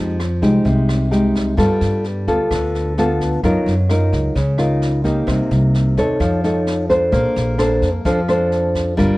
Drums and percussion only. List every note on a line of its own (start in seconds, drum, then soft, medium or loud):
0.20 cross-stick medium
0.20 snare soft
0.42 kick soft
0.42 snare soft
0.65 kick soft
0.65 snare soft
0.89 cross-stick medium
0.89 snare soft
1.12 snare soft
1.35 kick soft
1.35 snare soft
1.58 kick medium
1.58 cross-stick medium
1.58 snare soft
1.81 snare soft
2.04 snare soft
2.27 kick soft
2.27 snare soft
2.51 kick soft
2.51 cross-stick soft
2.51 snare soft
2.75 snare soft
2.98 snare soft
3.20 kick soft
3.20 snare soft
3.43 kick soft
3.43 cross-stick medium
3.43 snare soft
3.67 snare soft
3.89 cross-stick medium
3.89 snare soft
4.12 kick soft
4.12 snare soft
4.36 kick soft
4.36 snare soft
4.58 cross-stick medium
4.58 snare soft
4.82 snare soft
5.05 kick soft
5.05 snare soft
5.28 kick medium
5.28 cross-stick medium
5.28 snare soft
5.51 snare soft
5.74 snare soft
5.97 kick soft
5.97 snare soft
6.20 kick soft
6.20 cross-stick soft
6.20 snare soft
6.44 snare soft
6.67 snare soft
6.89 kick soft
6.89 snare soft
7.13 kick medium
7.13 cross-stick medium
7.13 snare soft
7.36 snare soft
7.59 cross-stick medium
7.59 snare soft
7.82 kick soft
7.82 snare soft
8.05 kick soft
8.05 snare soft
8.28 cross-stick medium
8.28 snare soft
8.52 snare soft
8.75 kick soft
8.75 snare soft
8.98 kick medium
8.98 cross-stick medium
8.98 snare soft